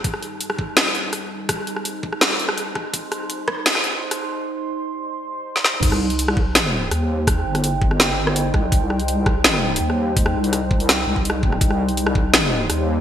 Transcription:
<<
  \new Staff \with { instrumentName = "Ambient pad" } { \time 4/4 \key c \minor \tempo 4 = 166 << { c'''1~ | c'''1~ | c'''1~ | c'''1 |
g''1~ | g''1~ | g''1~ | g''1 |
d''1 | } \\ { <g ees' c''>1~ | <g ees' c''>1~ | <g ees' c''>1~ | <g ees' c''>1 |
<g ees' c''>1~ | <g ees' c''>1~ | <g ees' c''>1~ | <g ees' c''>1~ |
<g ees' c''>1 | } >> }
  \new Staff \with { instrumentName = "Wobble bass" } { \clef bass \time 4/4 \key c \minor r1 | r1 | r1 | r1 |
c,2. ees,4~ | ees,8 g,,2. c,8 | c,2. ees,4~ | ees,8 c,2 c,4. |
c,2. ees,4 | }
  \new DrumStaff \with { instrumentName = "Drums" } \drummode { \time 4/4 <hh bd>16 ss16 hh8 hh16 ss16 bd8 <hh ss sn>8 hh8 <hh ss>4 | <hh bd ss>8 hh16 ss16 hh8 bd16 ss16 <hh sn>8 hh16 ss16 hh8 <bd ss>8 | <hh bd>8 <hh ss>8 hh8 <bd ss>8 <hh sn>16 ss16 hh8 r16 <hh ss>8. | r4 r4 r4 r16 sn16 sn16 toml16 |
<cymc hh bd>16 ss8 hh16 hh16 ss16 bd8 <hh ss sn>4 <hh ss>4 | <hh bd ss>8. <hh ss>16 hh8 bd16 ss16 <hh sn>8. ss16 hh8 <bd ss>8 | <hh bd>8 ss16 hh16 hh8 <bd ss>8 <hh sn>16 ss8 r32 hh32 r16 ss8. | <hh bd>16 ss8 hh16 <hh ss>8 bd16 hh16 <hh ss sn>8. bd16 hh32 ss16. bd16 ss16 |
<hh bd>16 ss8 hh16 hh16 ss16 bd8 <hh ss sn>4 <hh ss>4 | }
>>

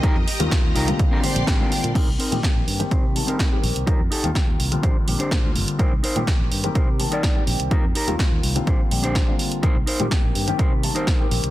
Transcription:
<<
  \new Staff \with { instrumentName = "String machine" } { \time 4/4 \key c \dorian \tempo 4 = 125 <g' ees'' bes''>2 <g' d'' c'''>2 | r1 | r1 | r1 |
r1 | r1 | }
  \new Staff \with { instrumentName = "Clean electric guitar" } { \time 4/4 \key c \dorian << { r2 r8 c''8 g''4 | r1 | r1 | r1 |
r1 | r1 | } \\ { <ees' f' g' bes'>16 r4 r16 <ees' f' g' bes'>16 r8 <c' d' g' bes'>16 r8 <c' d' g' bes'>8 r8 | <c' ees' bes'>16 r16 <c' ees' bes'>8 r4 <c' ees' c''>16 r8 <c' ees' bes'>8. r8 | <ees' g' bes'>16 r16 <ees' g' a'>8 r4 <d' g' c''>16 r8 <d' g' c''>8. r8 | <ees' bes' c''>16 r16 <ees' bes' c''>8 r4 <ees' bes' c''>16 r8 <ees' bes' d''>8. r8 |
<ees' g' bes'>16 r16 <ees' g' bes'>8 r4 <d' g' c''>16 r8 <d' g' c''>8. r8 | <ees' bes' c''>16 r16 <ees' bes' c''>8 r4 <ees' bes' c''>16 r8 <ees' bes' c''>8. r8 | } >> }
  \new Staff \with { instrumentName = "Grand piano" } { \time 4/4 \key c \dorian <ees g bes c' f'>16 r8 <ees g bes c' f'>4 <d g bes c' f'>8. <d g bes c' g'>8. <d g bes c' f'>8. | <ees g bes c' g'>16 r8 <ees g bes c' g'>4 <ees g bes c' g'>8. <ees g bes c' a''>8. <ees g bes c' g'>8. | <ees g bes c' f'>16 r8 <ees g bes c' f'>4 <d g bes c' f'>8. <d g bes c' g'>8. <d g bes c' f'>8. | <ees g bes c' g'>16 r8 <ees g bes c' g'>4 <ees g bes c' g'>8. <ees g bes c' a''>8. <ees g bes c' g'>8. |
<ees g bes c' f'>16 r8 <ees g bes c' f'>4 <d g bes c' f'>8. <d g bes c' g'>8. <d g bes c' f'>8. | <ees g bes c' g'>16 r8 <ees g bes c' g'>4 <ees g bes c' g'>8. <ees g bes c' a''>8. <ees g bes c' g'>8. | }
  \new Staff \with { instrumentName = "Fingered electric bass" } { \clef bass \time 4/4 \key c \dorian r16 f,16 r16 ees,16 r16 ees,16 c,16 r4 bes,,16 bes,,16 r8 bes,16 | r16 c,16 r16 bes,16 r16 bes,,16 g,16 r16 c8 r4 bes,,16 c,16 | r16 f,16 r16 ees,16 r16 ees,16 c,16 r16 bes,,16 r16 bes,,16 r16 bes,16 d,16 g,,16 r16 | r16 c,16 r16 bes,16 r16 bes,,16 g,16 r16 c8 r4 bes,,16 c,16 |
r16 f,16 r16 ees,16 r16 ees,16 c,16 r16 bes,,16 r16 bes,,8 r4 | r16 c,16 r16 bes,16 r16 bes,,16 g,16 r16 c8 r4 bes,,16 c,16 | }
  \new DrumStaff \with { instrumentName = "Drums" } \drummode { \time 4/4 <hh bd>8 hho16 hh16 <hh bd sn>8 hho16 hh16 <hh bd>8 hho16 hh16 <hh bd sn>8 hho16 hh16 | <cymc hh bd>8 hho16 hh16 <hh bd sn>8 hho16 hh16 <hh bd>8 hho16 hh16 <hh bd sn>8 hho16 hh16 | <hh bd>8 hho16 hh16 <hh bd sn>8 hho16 hh16 <hh bd>8 hho16 hh16 <hh bd sn>8 hho16 hh16 | <hh bd>8 hho16 hh16 <hh bd sn>8 hho16 hh16 <hh bd>8 hho16 hh16 <hh bd sn>8 hho16 hh16 |
<hh bd>8 hho16 hh16 <hh bd sn>8 hho16 hh16 <hh bd>8 hho16 hh16 <hh bd sn>8 hho16 hh16 | <hh bd>8 hho16 hh16 <hh bd sn>8 hho16 hh16 <hh bd>8 hho16 hh16 <hh bd sn>8 hho16 hh16 | }
>>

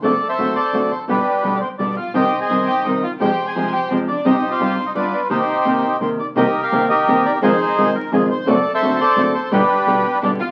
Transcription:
<<
  \new Staff \with { instrumentName = "Bandoneon" } { \time 3/4 \key c \minor \tempo 4 = 171 << { d''8. e''8. d''4 c''8 | b'4~ b'16. d''32 c''8 d''8 f''8 | g''8. aes''8. g''8 ees''8 f''8 | g''8. aes''8. g''8 c''8 d''8 |
ees''8. f''4 ees''16 d''8 d''8 | c''2 c''8 d''8 | ees''8. f''8. ees''4 d''8 | c''4. bes'8 aes'8 c''8 |
d''8. e''8. d''4 c''8 | b'2 d''8 f''8 | } \\ { a'8. <a' c''>8. a'4. | <d' g'>4. r4. | <c'' ees''>8. <c'' ees''>4. r8. | c''8. c''4. r8. |
<g' c''>8. c''4~ c''16 <f' b'>4 | <ees' g'>2 r4 | <g' bes'>8. bes'8. <g' bes'>4. | <ees' aes'>4. r4. |
a'8. <a' c''>8. a'4. | <d' g'>2 r4 | } >> }
  \new Staff \with { instrumentName = "Violin section" } { \time 3/4 \key c \minor r2. | r4 r16. d'32 c'8 d'8 f'8 | g'8. aes'8. g'8 ees'8 f'8 | g'8. aes'8. g'8 c'8 d'8 |
ees'8. f'4 ees'16 d'8 d'8 | c'2 r4 | r2. | r2. |
r2. | r2 d'8 f'8 | }
  \new Staff \with { instrumentName = "Nylon-string guitar" } { \time 3/4 \key c \minor <d a c' fis'>16 r8. <d a c' fis'>8 r8 <d a c' fis'>8 r8 | <b, d g b g'>16 r8. <b, d g b g'>8 r8 <b, d g b g'>8 r8 | <c ees g c' g'>16 r8. <c ees g c' g'>8 r8 <c ees g c' g'>8 r8 | <c f aes c' g'>16 r8. <c f aes c' g'>8 r8 <c f aes c' g'>8 r8 |
<c g c' ees' g'>16 r8. <c g c' ees' g'>8 r8 <g b f'>8 r8 | <c ees bes c' g'>16 r8. <c ees bes c' g'>8 r8 <c ees bes c' g'>8 r8 | <c ees bes c' g'>16 r8. <c ees bes c' g'>8 r8 <c ees bes c' g'>8 r8 | <c ees aes c' f'>16 r8. <c ees aes c' f'>8 r8 <c ees aes c' f'>8 r8 |
<d a c' fis'>16 r8. <d a c' fis'>8 r8 <d a c' fis'>8 r8 | <b, d g b g'>16 r8. <b, d g b g'>8 r8 <b, d g b g'>8 r8 | }
  \new Staff \with { instrumentName = "Double bass" } { \clef bass \time 3/4 \key c \minor fis,,8 r8 fis,,8 r8 fis,,8 f,,8 | g,,8 r8 d,8 r8 g,,8 bes,,8 | c,8 r8 g,,8 r8 c,8 r8 | f,8 r8 c,8 r8 f,8 r8 |
g,,8 r8 g,,8 r8 g,,8 r8 | r2. | c,8 r8 g,,8 r8 c,8 ees,8 | f,8 r8 c,8 r8 f,8 r8 |
fis,,8 r8 fis,,8 r8 fis,,8 r8 | g,,8 r8 d,8 r8 g,,8 bes,,8 | }
>>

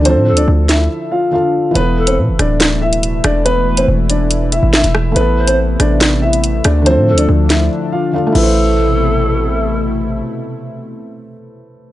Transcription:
<<
  \new Staff \with { instrumentName = "Pan flute" } { \time 4/4 \key a \minor \tempo 4 = 141 r8 a'8 r2. | r8 a'8 r2. | r8 b'8 r2. | r8 c''8 r2. |
r8 a'8 r2 r8 a'8~ | a'2. r4 | r1 | }
  \new Staff \with { instrumentName = "Grand piano" } { \time 4/4 \key a \minor <c' c''>8. <d' d''>16 r8 <e' e''>4 <f' f''>8 <f' f''>4 | <b b'>8. <c' c''>16 r8 <d' d''>4 <e' e''>4 <d' d''>8 | <b b'>8. <c' c''>16 r8 <d' d''>4 <e' e''>8 <e' e''>4 | <b b'>8. <c' c''>16 r8 <d' d''>4 <e' e''>4 <d' d''>8 |
<c' c''>8. <d' d''>16 r8 <e' e''>4 <f' f''>8 <f' f''>8 e'8~ | e'2. r4 | r1 | }
  \new Staff \with { instrumentName = "Felt piano" } { \time 4/4 \key a \minor <d f d' a'>2. <d d' f' a'>4 | <e e' a' b'>1~ | <e e' a' b'>1 | <a e' a' b'>1 |
<d f d' a'>2. <d d' f' a'>8 <a e' b' c''>8~ | <a e' b' c''>1~ | <a e' b' c''>1 | }
  \new Staff \with { instrumentName = "Analog synth pad" } { \clef bass \time 4/4 \key a \minor << { r1 | e'1~ | e'1~ | e'1 |
d'2.~ d'8 <b, c a e'>8~ | <b, c a e'>1~ | <b, c a e'>1 | } \\ { r1 | <b, e a>1~ | <b, e a>1 | <c a b>1 |
<d f>2.~ <d f>8 r8 | r1 | r1 | } >> }
  \new Staff \with { instrumentName = "808-style bass" } { \clef bass \time 4/4 \key a \minor d,16 a,16. d,16. d,4 r2 | e,,4 b,16 e,,16 d,,2 e,,8~ | e,,4 e,,4.~ e,,16 gis,,8 e,,8. | a,,4. a,,2 d,8~ |
d,16 a,16. d,16. d,4 r4. a,,8~ | a,,1 | r1 | }
  \new DrumStaff \with { instrumentName = "Drums" } \drummode { \time 4/4 hh8. hh16 r8 <hh sn>8 r4 r4 | hh8. hh16 r8 <hh ss>8 <hh sn>8. hh16 hh8 <hh ss>8 | hh8. hh16 r8 hh8 hh8 hh8 sn16 hh16 ss8 | hh8. hh16 r8 <hh ss>8 <hh sn>8. hh16 hh8 <hh ss>8 |
hh8. hh16 r8 <hh sn>8 r4 r8 cymc8 | r4 r4 r4 r4 | r4 r4 r4 r4 | }
>>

